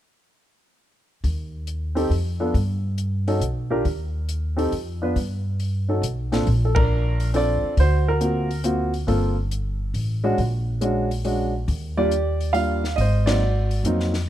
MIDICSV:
0, 0, Header, 1, 5, 480
1, 0, Start_track
1, 0, Key_signature, -2, "major"
1, 0, Tempo, 434783
1, 1367, Time_signature, 3, 2, 24, 8
1, 15777, End_track
2, 0, Start_track
2, 0, Title_t, "Grand piano"
2, 0, Program_c, 0, 0
2, 2156, Note_on_c, 0, 60, 59
2, 2163, Note_on_c, 0, 63, 56
2, 2168, Note_on_c, 0, 67, 56
2, 2169, Note_on_c, 0, 69, 62
2, 2305, Note_off_c, 0, 60, 0
2, 2309, Note_off_c, 0, 63, 0
2, 2311, Note_off_c, 0, 67, 0
2, 2312, Note_off_c, 0, 69, 0
2, 2649, Note_on_c, 0, 62, 53
2, 2650, Note_on_c, 0, 59, 49
2, 2652, Note_on_c, 0, 65, 47
2, 2656, Note_on_c, 0, 69, 57
2, 2792, Note_off_c, 0, 62, 0
2, 2793, Note_off_c, 0, 59, 0
2, 2794, Note_off_c, 0, 65, 0
2, 2796, Note_off_c, 0, 69, 0
2, 3615, Note_on_c, 0, 61, 61
2, 3618, Note_on_c, 0, 66, 53
2, 3620, Note_on_c, 0, 63, 56
2, 3621, Note_on_c, 0, 69, 64
2, 3757, Note_off_c, 0, 61, 0
2, 3758, Note_off_c, 0, 66, 0
2, 3759, Note_off_c, 0, 63, 0
2, 3759, Note_off_c, 0, 69, 0
2, 4089, Note_on_c, 0, 65, 59
2, 4090, Note_on_c, 0, 62, 60
2, 4090, Note_on_c, 0, 67, 56
2, 4099, Note_on_c, 0, 70, 66
2, 4234, Note_off_c, 0, 62, 0
2, 4234, Note_off_c, 0, 65, 0
2, 4235, Note_off_c, 0, 67, 0
2, 4239, Note_off_c, 0, 70, 0
2, 5040, Note_on_c, 0, 60, 56
2, 5043, Note_on_c, 0, 63, 53
2, 5052, Note_on_c, 0, 67, 49
2, 5053, Note_on_c, 0, 69, 64
2, 5191, Note_off_c, 0, 60, 0
2, 5192, Note_off_c, 0, 63, 0
2, 5197, Note_off_c, 0, 67, 0
2, 5197, Note_off_c, 0, 69, 0
2, 5539, Note_on_c, 0, 59, 55
2, 5539, Note_on_c, 0, 62, 55
2, 5547, Note_on_c, 0, 65, 49
2, 5551, Note_on_c, 0, 71, 61
2, 5681, Note_off_c, 0, 59, 0
2, 5681, Note_off_c, 0, 62, 0
2, 5685, Note_off_c, 0, 65, 0
2, 5687, Note_off_c, 0, 71, 0
2, 6497, Note_on_c, 0, 61, 51
2, 6499, Note_on_c, 0, 63, 46
2, 6506, Note_on_c, 0, 66, 46
2, 6507, Note_on_c, 0, 69, 56
2, 6640, Note_off_c, 0, 61, 0
2, 6641, Note_off_c, 0, 63, 0
2, 6645, Note_off_c, 0, 66, 0
2, 6646, Note_off_c, 0, 69, 0
2, 6974, Note_on_c, 0, 46, 61
2, 6978, Note_on_c, 0, 60, 54
2, 6983, Note_on_c, 0, 62, 54
2, 6986, Note_on_c, 0, 65, 51
2, 6989, Note_on_c, 0, 69, 63
2, 7119, Note_off_c, 0, 46, 0
2, 7121, Note_off_c, 0, 60, 0
2, 7124, Note_off_c, 0, 62, 0
2, 7125, Note_off_c, 0, 65, 0
2, 7127, Note_off_c, 0, 69, 0
2, 7342, Note_on_c, 0, 69, 57
2, 7449, Note_on_c, 0, 70, 95
2, 7455, Note_off_c, 0, 69, 0
2, 7471, Note_on_c, 0, 62, 56
2, 8049, Note_off_c, 0, 70, 0
2, 8060, Note_off_c, 0, 62, 0
2, 8101, Note_on_c, 0, 60, 56
2, 8103, Note_on_c, 0, 62, 51
2, 8107, Note_on_c, 0, 65, 50
2, 8112, Note_on_c, 0, 69, 64
2, 8128, Note_on_c, 0, 74, 95
2, 8562, Note_off_c, 0, 74, 0
2, 8581, Note_off_c, 0, 60, 0
2, 8582, Note_off_c, 0, 62, 0
2, 8584, Note_off_c, 0, 65, 0
2, 8586, Note_off_c, 0, 69, 0
2, 8608, Note_on_c, 0, 72, 89
2, 8612, Note_on_c, 0, 66, 60
2, 8924, Note_off_c, 0, 66, 0
2, 8924, Note_on_c, 0, 70, 88
2, 8928, Note_off_c, 0, 72, 0
2, 8941, Note_on_c, 0, 66, 53
2, 9053, Note_off_c, 0, 66, 0
2, 9058, Note_on_c, 0, 60, 44
2, 9061, Note_on_c, 0, 58, 50
2, 9061, Note_on_c, 0, 65, 47
2, 9070, Note_on_c, 0, 66, 53
2, 9351, Note_off_c, 0, 60, 0
2, 9353, Note_off_c, 0, 58, 0
2, 9353, Note_off_c, 0, 65, 0
2, 9357, Note_off_c, 0, 66, 0
2, 9506, Note_off_c, 0, 70, 0
2, 9536, Note_on_c, 0, 60, 51
2, 9539, Note_on_c, 0, 58, 55
2, 9546, Note_on_c, 0, 65, 47
2, 9547, Note_on_c, 0, 66, 67
2, 9830, Note_off_c, 0, 60, 0
2, 9831, Note_off_c, 0, 58, 0
2, 9835, Note_off_c, 0, 65, 0
2, 9835, Note_off_c, 0, 66, 0
2, 10013, Note_on_c, 0, 58, 58
2, 10019, Note_on_c, 0, 60, 53
2, 10020, Note_on_c, 0, 65, 57
2, 10026, Note_on_c, 0, 69, 66
2, 10308, Note_off_c, 0, 58, 0
2, 10311, Note_off_c, 0, 60, 0
2, 10312, Note_off_c, 0, 65, 0
2, 10314, Note_off_c, 0, 69, 0
2, 11301, Note_on_c, 0, 56, 71
2, 11305, Note_on_c, 0, 62, 64
2, 11307, Note_on_c, 0, 61, 67
2, 11310, Note_on_c, 0, 66, 77
2, 11442, Note_off_c, 0, 56, 0
2, 11444, Note_off_c, 0, 62, 0
2, 11445, Note_off_c, 0, 61, 0
2, 11447, Note_off_c, 0, 66, 0
2, 11935, Note_on_c, 0, 56, 62
2, 11938, Note_on_c, 0, 61, 56
2, 11942, Note_on_c, 0, 62, 53
2, 11945, Note_on_c, 0, 66, 65
2, 12228, Note_off_c, 0, 56, 0
2, 12229, Note_off_c, 0, 61, 0
2, 12231, Note_off_c, 0, 62, 0
2, 12233, Note_off_c, 0, 66, 0
2, 12416, Note_on_c, 0, 56, 55
2, 12419, Note_on_c, 0, 62, 51
2, 12421, Note_on_c, 0, 61, 44
2, 12426, Note_on_c, 0, 66, 61
2, 12707, Note_off_c, 0, 56, 0
2, 12709, Note_off_c, 0, 62, 0
2, 12710, Note_off_c, 0, 61, 0
2, 12713, Note_off_c, 0, 66, 0
2, 13218, Note_on_c, 0, 55, 60
2, 13220, Note_on_c, 0, 58, 51
2, 13220, Note_on_c, 0, 74, 90
2, 13223, Note_on_c, 0, 62, 56
2, 13231, Note_on_c, 0, 65, 66
2, 13231, Note_on_c, 0, 67, 65
2, 13359, Note_off_c, 0, 55, 0
2, 13359, Note_off_c, 0, 58, 0
2, 13361, Note_off_c, 0, 62, 0
2, 13365, Note_off_c, 0, 65, 0
2, 13816, Note_off_c, 0, 67, 0
2, 13832, Note_on_c, 0, 77, 100
2, 13838, Note_on_c, 0, 55, 62
2, 13841, Note_on_c, 0, 58, 52
2, 13845, Note_on_c, 0, 62, 55
2, 13848, Note_on_c, 0, 65, 71
2, 13873, Note_off_c, 0, 74, 0
2, 14137, Note_off_c, 0, 55, 0
2, 14138, Note_off_c, 0, 58, 0
2, 14140, Note_off_c, 0, 62, 0
2, 14142, Note_off_c, 0, 65, 0
2, 14306, Note_on_c, 0, 75, 92
2, 14336, Note_off_c, 0, 77, 0
2, 14359, Note_on_c, 0, 72, 64
2, 14640, Note_on_c, 0, 74, 89
2, 14645, Note_on_c, 0, 54, 49
2, 14650, Note_on_c, 0, 58, 47
2, 14650, Note_on_c, 0, 60, 48
2, 14652, Note_off_c, 0, 75, 0
2, 14657, Note_on_c, 0, 63, 61
2, 14690, Note_on_c, 0, 66, 53
2, 14790, Note_off_c, 0, 54, 0
2, 14792, Note_off_c, 0, 60, 0
2, 14793, Note_off_c, 0, 58, 0
2, 14796, Note_off_c, 0, 63, 0
2, 15103, Note_off_c, 0, 72, 0
2, 15237, Note_off_c, 0, 74, 0
2, 15263, Note_off_c, 0, 66, 0
2, 15285, Note_on_c, 0, 54, 57
2, 15295, Note_on_c, 0, 58, 48
2, 15295, Note_on_c, 0, 60, 48
2, 15296, Note_on_c, 0, 63, 62
2, 15578, Note_off_c, 0, 54, 0
2, 15583, Note_off_c, 0, 58, 0
2, 15583, Note_off_c, 0, 60, 0
2, 15584, Note_off_c, 0, 63, 0
2, 15777, End_track
3, 0, Start_track
3, 0, Title_t, "Upright bass"
3, 0, Program_c, 1, 32
3, 1366, Note_on_c, 1, 39, 74
3, 2285, Note_off_c, 1, 39, 0
3, 2317, Note_on_c, 1, 41, 68
3, 2771, Note_off_c, 1, 41, 0
3, 2806, Note_on_c, 1, 43, 77
3, 3727, Note_off_c, 1, 43, 0
3, 3759, Note_on_c, 1, 35, 66
3, 4213, Note_off_c, 1, 35, 0
3, 4249, Note_on_c, 1, 39, 71
3, 5170, Note_off_c, 1, 39, 0
3, 5209, Note_on_c, 1, 41, 61
3, 5660, Note_off_c, 1, 41, 0
3, 5696, Note_on_c, 1, 43, 70
3, 6614, Note_off_c, 1, 43, 0
3, 6642, Note_on_c, 1, 35, 64
3, 7097, Note_off_c, 1, 35, 0
3, 7137, Note_on_c, 1, 34, 78
3, 8379, Note_off_c, 1, 34, 0
3, 8580, Note_on_c, 1, 38, 82
3, 9976, Note_off_c, 1, 38, 0
3, 10024, Note_on_c, 1, 31, 79
3, 10937, Note_off_c, 1, 31, 0
3, 10971, Note_on_c, 1, 33, 66
3, 11421, Note_off_c, 1, 33, 0
3, 11461, Note_on_c, 1, 34, 78
3, 12853, Note_off_c, 1, 34, 0
3, 12892, Note_on_c, 1, 39, 82
3, 14286, Note_off_c, 1, 39, 0
3, 14327, Note_on_c, 1, 32, 77
3, 15242, Note_off_c, 1, 32, 0
3, 15275, Note_on_c, 1, 41, 62
3, 15727, Note_off_c, 1, 41, 0
3, 15777, End_track
4, 0, Start_track
4, 0, Title_t, "Muted upright bass strokes"
4, 8419, Note_on_c, 9, 29, 34
4, 8529, Note_off_c, 9, 29, 0
4, 15777, End_track
5, 0, Start_track
5, 0, Title_t, "Drums"
5, 1367, Note_on_c, 9, 36, 28
5, 1370, Note_on_c, 9, 46, 37
5, 1477, Note_off_c, 9, 36, 0
5, 1480, Note_off_c, 9, 46, 0
5, 1845, Note_on_c, 9, 42, 41
5, 1956, Note_off_c, 9, 42, 0
5, 2171, Note_on_c, 9, 46, 33
5, 2281, Note_off_c, 9, 46, 0
5, 2334, Note_on_c, 9, 46, 41
5, 2444, Note_off_c, 9, 46, 0
5, 2808, Note_on_c, 9, 36, 30
5, 2813, Note_on_c, 9, 46, 36
5, 2919, Note_off_c, 9, 36, 0
5, 2923, Note_off_c, 9, 46, 0
5, 3289, Note_on_c, 9, 42, 42
5, 3399, Note_off_c, 9, 42, 0
5, 3618, Note_on_c, 9, 46, 32
5, 3728, Note_off_c, 9, 46, 0
5, 3770, Note_on_c, 9, 42, 46
5, 3880, Note_off_c, 9, 42, 0
5, 4251, Note_on_c, 9, 46, 35
5, 4253, Note_on_c, 9, 36, 31
5, 4361, Note_off_c, 9, 46, 0
5, 4363, Note_off_c, 9, 36, 0
5, 4733, Note_on_c, 9, 42, 42
5, 4843, Note_off_c, 9, 42, 0
5, 5063, Note_on_c, 9, 46, 35
5, 5173, Note_off_c, 9, 46, 0
5, 5215, Note_on_c, 9, 46, 40
5, 5325, Note_off_c, 9, 46, 0
5, 5697, Note_on_c, 9, 36, 29
5, 5699, Note_on_c, 9, 46, 38
5, 5807, Note_off_c, 9, 36, 0
5, 5810, Note_off_c, 9, 46, 0
5, 6178, Note_on_c, 9, 46, 38
5, 6289, Note_off_c, 9, 46, 0
5, 6661, Note_on_c, 9, 42, 49
5, 6772, Note_off_c, 9, 42, 0
5, 6981, Note_on_c, 9, 46, 30
5, 6982, Note_on_c, 9, 38, 44
5, 7092, Note_off_c, 9, 46, 0
5, 7093, Note_off_c, 9, 38, 0
5, 7140, Note_on_c, 9, 36, 31
5, 7140, Note_on_c, 9, 46, 39
5, 7250, Note_off_c, 9, 46, 0
5, 7251, Note_off_c, 9, 36, 0
5, 7460, Note_on_c, 9, 51, 68
5, 7465, Note_on_c, 9, 36, 78
5, 7571, Note_off_c, 9, 51, 0
5, 7575, Note_off_c, 9, 36, 0
5, 7948, Note_on_c, 9, 46, 39
5, 8058, Note_off_c, 9, 46, 0
5, 8104, Note_on_c, 9, 46, 44
5, 8214, Note_off_c, 9, 46, 0
5, 8581, Note_on_c, 9, 46, 43
5, 8582, Note_on_c, 9, 36, 32
5, 8692, Note_off_c, 9, 36, 0
5, 8692, Note_off_c, 9, 46, 0
5, 9063, Note_on_c, 9, 42, 45
5, 9173, Note_off_c, 9, 42, 0
5, 9391, Note_on_c, 9, 46, 37
5, 9502, Note_off_c, 9, 46, 0
5, 9538, Note_on_c, 9, 42, 51
5, 9648, Note_off_c, 9, 42, 0
5, 9866, Note_on_c, 9, 46, 32
5, 9977, Note_off_c, 9, 46, 0
5, 10024, Note_on_c, 9, 36, 29
5, 10024, Note_on_c, 9, 46, 41
5, 10134, Note_off_c, 9, 36, 0
5, 10135, Note_off_c, 9, 46, 0
5, 10504, Note_on_c, 9, 42, 49
5, 10614, Note_off_c, 9, 42, 0
5, 10978, Note_on_c, 9, 46, 47
5, 11089, Note_off_c, 9, 46, 0
5, 11460, Note_on_c, 9, 46, 40
5, 11462, Note_on_c, 9, 36, 30
5, 11571, Note_off_c, 9, 46, 0
5, 11573, Note_off_c, 9, 36, 0
5, 11939, Note_on_c, 9, 42, 45
5, 12049, Note_off_c, 9, 42, 0
5, 12268, Note_on_c, 9, 46, 35
5, 12378, Note_off_c, 9, 46, 0
5, 12416, Note_on_c, 9, 46, 41
5, 12526, Note_off_c, 9, 46, 0
5, 12895, Note_on_c, 9, 46, 39
5, 12896, Note_on_c, 9, 36, 30
5, 13006, Note_off_c, 9, 46, 0
5, 13007, Note_off_c, 9, 36, 0
5, 13374, Note_on_c, 9, 42, 47
5, 13484, Note_off_c, 9, 42, 0
5, 13696, Note_on_c, 9, 46, 38
5, 13806, Note_off_c, 9, 46, 0
5, 13848, Note_on_c, 9, 46, 44
5, 13958, Note_off_c, 9, 46, 0
5, 14177, Note_on_c, 9, 38, 36
5, 14287, Note_off_c, 9, 38, 0
5, 14329, Note_on_c, 9, 46, 42
5, 14330, Note_on_c, 9, 36, 30
5, 14440, Note_off_c, 9, 36, 0
5, 14440, Note_off_c, 9, 46, 0
5, 14652, Note_on_c, 9, 51, 71
5, 14653, Note_on_c, 9, 38, 72
5, 14762, Note_off_c, 9, 51, 0
5, 14763, Note_off_c, 9, 38, 0
5, 15134, Note_on_c, 9, 46, 39
5, 15245, Note_off_c, 9, 46, 0
5, 15288, Note_on_c, 9, 42, 53
5, 15398, Note_off_c, 9, 42, 0
5, 15452, Note_on_c, 9, 38, 26
5, 15563, Note_off_c, 9, 38, 0
5, 15607, Note_on_c, 9, 38, 36
5, 15612, Note_on_c, 9, 46, 32
5, 15718, Note_off_c, 9, 38, 0
5, 15722, Note_off_c, 9, 46, 0
5, 15777, End_track
0, 0, End_of_file